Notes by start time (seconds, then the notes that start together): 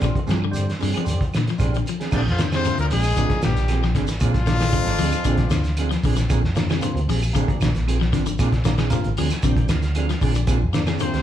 0.00 A#1 D3 G3 C4 F4, kick, snare, closed hi-hat, claves, shekere
0.04 D3
0.14 muted clean electric guitar stroke, kick, closed hi-hat
0.27 G2 F3 C4 D4 G#4, snare, closed hi-hat, shekere
0.31 F3
0.40 muted clean electric guitar stroke, claves
0.44 D3
0.51 D3 G3 C4 G4, shekere
0.56 closed hi-hat
0.67 muted clean electric guitar stroke, snare, closed hi-hat
0.79 G2 D3 F3 C4 D4 G#4, open hi-hat, shekere
0.94 F3 C4 D4 G#4, muted fingered electric bass stroke, closed hi-hat, claves
1.04 F2 D3 G3 C4 G4, muted clean electric guitar stroke, shekere
1.08 closed hi-hat
1.20 muted clean electric guitar stroke, kick, closed hi-hat
1.33 A#2, snare, closed hi-hat, claves, shekere
1.37 D3
1.46 muted clean electric guitar stroke, snare, closed hi-hat
1.50 F3
1.58 A#1 D3 F3 G3 C4 D4 F4 G#4, kick, closed hi-hat, claves, shekere
1.73 D3, muted clean electric guitar stroke, closed hi-hat
1.85 muted clean electric guitar stroke, closed hi-hat, shekere
1.89 F3
2.00 C4 D4 G#4, snare, closed hi-hat
2.11 A#1 D2 C3 F3 A#3 C4 D4 G#4, kick, crash, claves, shekere
2.16 D3 D4
2.25 F2, muted clean electric guitar stroke, snare
2.30 F3 F4
2.38 C3 D3 F3 A#3 C4, muted clean electric guitar stroke, snare, closed hi-hat, shekere
2.52 C3 D#3 C4 D4 G#4, snare, closed hi-hat, claves, shekere
2.56 C4 C5
2.65 C3 D3 F3 A#3 F4, closed hi-hat, shekere
2.78 D2 A#2 A#3 A#4, muted clean electric guitar stroke, closed hi-hat
2.90 A#1 G#2 F3 G#3 C4 D4 G#4, open hi-hat, shekere
3.03 muted clean electric guitar stroke, claves, shekere
3.16 A#1 C3 D3 F3 A#3 C4 D4 G#4, kick, closed hi-hat, shekere
3.30 muted clean electric guitar stroke, kick, snare, closed hi-hat
3.42 A#1 G2 D3 G3 G4, muted clean electric guitar stroke, snare, closed hi-hat, claves, shekere
3.56 A#1, snare, closed hi-hat, shekere
3.68 F3 C4 G#4, snare, closed hi-hat, claves
3.83 F3, muted clean electric guitar stroke, snare
3.95 G#1 D3 C4 D4 G#4, muted clean electric guitar stroke, kick, snare, closed hi-hat, shekere
4.07 muted clean electric guitar stroke, snare, closed hi-hat, shekere
4.20 F2 A#2 C3 F3 A#3 C4 D4 F4 G#4, kick, closed hi-hat, claves, shekere
4.34 A#1, muted clean electric guitar stroke, kick, snare, closed hi-hat
4.46 C3 D3 F3 A#3 D4, muted clean electric guitar stroke, snare, closed hi-hat, shekere
4.60 D#3 C4 D4 G#4, snare, closed hi-hat, claves, shekere
4.72 C3 D3 F3 A#3 D4, kick, closed hi-hat, shekere
4.86 G#1, muted clean electric guitar stroke, snare, closed hi-hat
4.99 D2 F3 C4 D4 G#4, open hi-hat, shekere
5.12 muted fingered electric bass stroke, muted clean electric guitar stroke, closed hi-hat, claves, shekere
5.24 A#1 C3 D3 F3 A#3 C4 D4 G#4, kick, closed hi-hat, shekere
5.37 muted clean electric guitar stroke, kick, snare, closed hi-hat
5.50 D2 D3, snare, closed hi-hat, claves, shekere
5.64 snare, closed hi-hat, shekere
5.77 F3 C4 D4 G#4, closed hi-hat, claves
5.91 F3, muted clean electric guitar stroke, snare, closed hi-hat
6.03 A#1 D3 F3 C4 D4 G#4, kick, open hi-hat, shekere
6.16 D3, muted clean electric guitar stroke, snare, closed hi-hat, shekere
6.29 A#1 C3 F3 A#3 C4 D4 G#4, kick, closed hi-hat, claves, shekere
6.42 F2, muted clean electric guitar stroke, snare
6.55 C3 D3 F3 A#3 D4, muted clean electric guitar stroke, snare, closed hi-hat, shekere
6.69 D#3 C4 D4 G#4, snare, closed hi-hat, claves, shekere
6.81 C3 D3 F3 A#3 C4, closed hi-hat, shekere
6.94 D2, muted clean electric guitar stroke, closed hi-hat
7.07 A#1 F3 C4 G#4, muted clean electric guitar stroke, open hi-hat, shekere
7.22 muted clean electric guitar stroke, claves, shekere
7.33 A#1 C3 D3 F3 A#3 C4 D4 G#4, kick, closed hi-hat, shekere
7.48 muted clean electric guitar stroke, muted fingered electric bass stroke, kick, closed hi-hat
7.60 A#1 D3, muted clean electric guitar stroke, snare, closed hi-hat, claves, shekere
7.74 A#1, snare, closed hi-hat, shekere
7.87 F3 C4 G#4, muted clean electric guitar stroke, closed hi-hat, claves
8.00 F3, muted clean electric guitar stroke, snare
8.13 G#1 D3 F3 C4 D4, kick, snare, closed hi-hat, shekere
8.26 D3, muted clean electric guitar stroke, closed hi-hat, shekere
8.39 A#2 C3 F3 A#3 C4 D4 G#4, kick, closed hi-hat, claves, shekere
8.52 A#1, muted clean electric guitar stroke, kick, snare, closed hi-hat
8.65 C3 D3 F3 A#3 D4, snare, closed hi-hat, shekere
8.78 D#3 C4 D4 G#4, snare, closed hi-hat, claves, shekere
8.90 C3 D3 F3 A#3 F4, kick, snare, closed hi-hat, shekere
9.04 G#1, muted clean electric guitar stroke, closed hi-hat
9.17 D2 F3 C4 D4 G#4 G#5, open hi-hat, shekere
9.30 muted clean electric guitar stroke, snare, closed hi-hat, claves, shekere
9.42 A#1 C3 D3 F3 A#3 C4 D4 G5, muted clean electric guitar stroke, kick, closed hi-hat, shekere
9.57 muted clean electric guitar stroke, kick, closed hi-hat
9.69 D2 D3 F5, muted clean electric guitar stroke, snare, closed hi-hat, claves, shekere
9.82 snare, closed hi-hat, shekere
9.95 F3 C4 D4 G#4 F5, closed hi-hat, claves
10.09 F3, muted clean electric guitar stroke, snare, closed hi-hat
10.20 A#1 D3 F3 C4 D4 G#4 D5, kick, open hi-hat, shekere
10.34 D3, muted clean electric guitar stroke, closed hi-hat, shekere
10.47 A#1 C3 F3 A#3 C4 D4 G#4, kick, closed hi-hat, claves, shekere
10.60 F2, muted clean electric guitar stroke
10.72 C3 D3 F3 A#3 D4, muted clean electric guitar stroke, snare, closed hi-hat, shekere
10.86 D#3 C4 D4 G#4, snare, closed hi-hat, claves, shekere
10.99 C3 D3 F3 A#3 C4 C5, closed hi-hat, shekere
11.13 D2, muted clean electric guitar stroke, snare, closed hi-hat